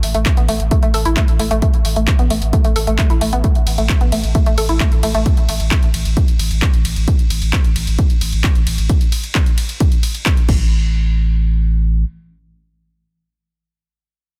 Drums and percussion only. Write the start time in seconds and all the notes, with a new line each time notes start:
0.03 open hi-hat
0.14 closed hi-hat
0.26 kick, clap, closed hi-hat
0.37 closed hi-hat
0.48 open hi-hat
0.60 closed hi-hat
0.71 kick, closed hi-hat
0.83 closed hi-hat
0.94 open hi-hat
1.05 closed hi-hat
1.17 kick, clap, closed hi-hat
1.28 closed hi-hat
1.39 open hi-hat
1.51 closed hi-hat
1.62 kick, closed hi-hat
1.74 closed hi-hat
1.85 open hi-hat
1.96 closed hi-hat
2.08 kick, clap, closed hi-hat
2.19 closed hi-hat
2.30 open hi-hat
2.42 closed hi-hat
2.53 kick, closed hi-hat
2.64 closed hi-hat
2.76 open hi-hat
2.87 closed hi-hat
2.99 kick, clap, closed hi-hat
3.10 closed hi-hat
3.21 open hi-hat
3.33 closed hi-hat
3.44 kick, closed hi-hat
3.55 closed hi-hat
3.67 open hi-hat, ride
3.78 closed hi-hat
3.89 kick, clap, closed hi-hat
4.01 closed hi-hat
4.12 open hi-hat, ride
4.24 closed hi-hat
4.35 kick, closed hi-hat
4.46 closed hi-hat
4.58 open hi-hat, ride
4.69 closed hi-hat
4.80 kick, clap, closed hi-hat
4.92 closed hi-hat
5.03 open hi-hat, ride
5.14 closed hi-hat
5.26 kick, closed hi-hat
5.37 closed hi-hat
5.49 open hi-hat, ride
5.60 closed hi-hat
5.71 kick, clap, closed hi-hat
5.83 closed hi-hat
5.94 open hi-hat, ride
6.05 closed hi-hat
6.17 kick, closed hi-hat
6.28 closed hi-hat
6.39 open hi-hat, ride
6.51 closed hi-hat
6.62 kick, clap, closed hi-hat
6.74 closed hi-hat
6.85 open hi-hat, ride
6.96 closed hi-hat
7.08 kick, closed hi-hat
7.19 closed hi-hat
7.30 open hi-hat, ride
7.42 closed hi-hat
7.53 kick, clap, closed hi-hat
7.64 closed hi-hat
7.76 open hi-hat, ride
7.87 closed hi-hat
7.99 kick, closed hi-hat
8.10 closed hi-hat
8.21 open hi-hat, ride
8.33 closed hi-hat
8.44 kick, clap, closed hi-hat
8.55 closed hi-hat
8.67 open hi-hat, ride
8.78 closed hi-hat
8.89 kick, closed hi-hat
9.01 closed hi-hat
9.12 open hi-hat, ride
9.24 closed hi-hat
9.35 kick, clap, closed hi-hat
9.46 closed hi-hat
9.58 open hi-hat, ride
9.69 closed hi-hat
9.80 kick, closed hi-hat
9.92 closed hi-hat
10.03 open hi-hat, ride
10.15 closed hi-hat
10.26 kick, clap, closed hi-hat
10.37 closed hi-hat
10.49 kick, crash